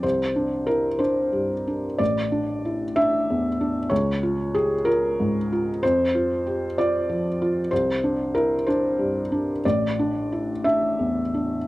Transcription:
\new Staff \with { instrumentName = "Felt piano" } { \time 6/8 \key a \phrygian \tempo 4. = 62 << { c''4 bes'8 c''4. | d''4. e''4. | des''4 aes'8 bes'4. | c''4. d''4. |
c''4 bes'8 c''4. | d''4. e''4. | } \\ { c,8 d'8 e'8 d'8 g,8 d'8 | a,,8 d'8 e'8 d'8 e,8 d'8 | des,8 f'8 g'8 f'8 aes,8 f'8 | f,8 f'8 g'8 f'8 f8 f'8 |
c,8 d'8 e'8 d'8 g,8 d'8 | a,,8 d'8 e'8 d'8 e,8 d'8 | } >> }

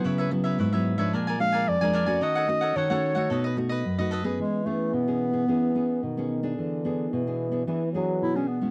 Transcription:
<<
  \new Staff \with { instrumentName = "Cavaquinho" } { \time 4/4 \key b \mixolydian \tempo 4 = 110 <e' b' cis'' e''>16 <b' cis'' e''>16 r16 <b' cis'' e''>16 <e' b' cis'' e''>16 <b' cis'' e''>8 <b' cis'' e''>16 <d' ais' d'' gis''>16 <ais' d'' gis''>16 r16 <ais' d'' gis''>8 <ais' d'' gis''>16 <d' ais' d'' gis''>16 <ais' d'' gis''>16 | <dis' a' cis'' fis''>16 <a' cis'' fis''>16 r16 <a' cis'' fis''>16 <dis' a' cis'' fis''>16 <a' cis'' fis''>8 <a' cis'' fis''>16 <a' b' dis''>16 <b' dis''>16 r16 <b' dis''>8 <b' dis''>16 <a' b' dis''>16 <b' dis''>16 | \key e \major r1 | r1 | }
  \new Staff \with { instrumentName = "Clarinet" } { \time 4/4 \key b \mixolydian r2 r8 eis''8 d''4 | dis''4 cis''4. r4. | \key e \major gis8 a8 b2~ b8 r8 | r2. e'16 cis'16 b8 | }
  \new Staff \with { instrumentName = "Nylon-string guitar" } { \time 4/4 \key b \mixolydian << { <fis b e'>8 <fis b e'>8. <fis b e'>8 <eis gis d'>8. <eis gis d'>8. <eis gis d'>8 <a cis' fis'>16~ | <a cis' fis'>8 <a cis' fis'>8. <a cis' fis'>8 <a dis' fis'>8. <a dis' fis'>8 r16 <a dis' fis'>8 <b cis' gis'>16~ | \key e \major <b cis' gis'>8 <b cis' gis'>8. <b cis' gis'>8 <b cis' gis'>16 <b cis' gis'>8 <b cis' gis'>8 r16 <b cis' gis'>8 <b d' gis'>16~ | <b d' gis'>8 <b d' gis'>8. <b d' gis'>8 <b d' gis'>16 <b d' gis'>16 r16 <b d' gis'>8. <b d' gis'>8 <gis cis' e'>16 | } \\ { cis4 gis,4 ais,4 eis,4 | dis4 dis4 b,4 fis,4 | e4 b,4 e4 b,4 | e4 b,4 e4 b,4 | } >> }
  \new Staff \with { instrumentName = "Trombone" } { \clef bass \time 4/4 \key b \mixolydian r1 | r1 | \key e \major e2 e4 dis4 | d4 e4 e8 fis4 r8 | }
>>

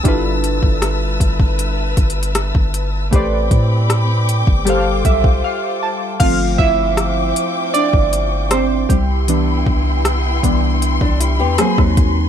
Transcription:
<<
  \new Staff \with { instrumentName = "String section" } { \time 4/4 \key g \mixolydian \tempo 4 = 78 << { e'''1 | d'''1 | d'''2.~ d'''8 c'''8~ | c'''1 | } \\ { <b' e'' a''>1 | <c' g'' b''>2 <f' c''>2 | <f c'' g''>2.~ <f c'' g''>8 <b e' g''>8~ | <b e' g''>2. <ges' bes' aes''>4 | } >> }
  \new Staff \with { instrumentName = "Synth keys" } { \time 4/4 \key g \mixolydian << { r1 | r2 r8 e''8 f''8 a''8 | <f' f''>8 <e' e''>4. <d' d''>4 <c' c''>8 <g g'>8~ | <g g'>8 r2. r8 | } \\ { <g d' e' f' a' b'>1 | <a g' b' c'' d''>2 <g g' a' c'' f''>2 | <f a c'>2.~ <f a c'>8 r8 | <e b d'>4. <e b d'>8 r4 <ges bes c'>4 | } >> }
  \new Staff \with { instrumentName = "Steel-string acoustic guitar" } { \time 4/4 \key g \mixolydian r1 | r1 | r1 | r2 r16 d'16 <g e'>16 <b g'>16 <c' aes'>16 <ges ees'>8. | }
  \new Staff \with { instrumentName = "808-style bass" } { \clef bass \time 4/4 \key g \mixolydian g,,8. g,,8. g,,4 g,,8. g,,8. | a,,8 a,4~ a,16 g,,8. b,,8 r4 | g,,8 g,,4 r8. g,,4~ g,,16 c,8~ | c,8 c,4 c,8. c,8 e,16 r16 ees,8. | }
  \new DrumStaff \with { instrumentName = "Drums" } \drummode { \time 4/4 <hh bd>8 hh16 bd16 <hh ss>8 <hh bd>16 bd16 \tuplet 3/2 { hh16 r16 r16 <hh bd>16 hh16 hh16 } <hh ss>16 bd16 hh8 | <hh bd>8 <hh bd>8 <hh ss>8 hh16 bd16 hh8 <hh bd>16 bd16 r4 | <cymc hh bd>8 bd8 <hh ss>8 hh8 hh16 bd16 hh8 <hh ss>8 <hh bd>8 | hh8 bd8 <hh ss>8 <hh bd>8 hh16 bd16 hh8 <hh ss>16 <bd ss>16 <hh bd>8 | }
>>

